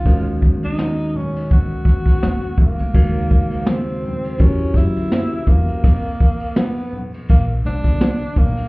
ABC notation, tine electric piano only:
X:1
M:4/4
L:1/8
Q:"Swing 16ths" 1/4=83
K:Ebdor
V:1 name="Tine electric piano"
[E,A,DGB]8 | [D,E,A,GB]4 [G,^C=EG=GB]4 | z8 |]